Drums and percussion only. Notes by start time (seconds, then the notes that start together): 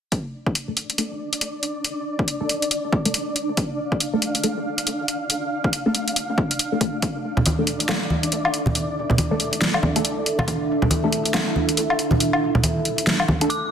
0.12 kick, closed hi-hat
0.47 kick
0.55 closed hi-hat
0.77 closed hi-hat
0.90 closed hi-hat
0.98 closed hi-hat
1.33 closed hi-hat
1.41 closed hi-hat
1.63 closed hi-hat
1.85 closed hi-hat
2.19 kick
2.28 closed hi-hat
2.49 closed hi-hat
2.62 closed hi-hat
2.71 closed hi-hat
2.93 kick
3.05 closed hi-hat
3.14 closed hi-hat
3.36 closed hi-hat
3.57 kick, closed hi-hat
3.92 kick
4.00 closed hi-hat
4.22 closed hi-hat
4.35 closed hi-hat
4.44 closed hi-hat
4.78 closed hi-hat
4.87 closed hi-hat
5.08 closed hi-hat
5.30 closed hi-hat
5.64 kick
5.73 closed hi-hat
5.95 closed hi-hat
6.08 closed hi-hat
6.16 closed hi-hat
6.38 kick
6.51 closed hi-hat
6.59 closed hi-hat
6.81 kick, closed hi-hat
7.02 kick, closed hi-hat
7.37 kick, low conga
7.46 closed hi-hat, high conga
7.67 closed hi-hat
7.80 closed hi-hat
7.89 snare, closed hi-hat, low woodblock
8.10 high conga
8.23 closed hi-hat
8.32 closed hi-hat
8.45 low woodblock
8.54 closed hi-hat
8.66 high conga, low conga
8.75 closed hi-hat
9.10 kick, low conga
9.18 closed hi-hat, high conga
9.40 closed hi-hat
9.53 closed hi-hat
9.62 snare, closed hi-hat
9.74 low woodblock
9.83 kick, high conga
9.96 closed hi-hat
10.05 closed hi-hat
10.26 closed hi-hat
10.39 high conga, low conga, low woodblock
10.48 kick, closed hi-hat
10.82 kick, low conga
10.91 closed hi-hat, high conga
11.13 closed hi-hat
11.26 closed hi-hat
11.34 snare, closed hi-hat, low woodblock
11.56 high conga
11.69 closed hi-hat
11.77 closed hi-hat
11.90 low woodblock
11.99 closed hi-hat
12.11 high conga, low conga
12.20 closed hi-hat
12.33 low woodblock
12.55 kick, low conga
12.63 closed hi-hat, high conga
12.85 closed hi-hat
12.98 closed hi-hat
13.07 snare, closed hi-hat
13.20 low woodblock
13.28 kick, high conga
13.41 closed hi-hat
13.50 closed hi-hat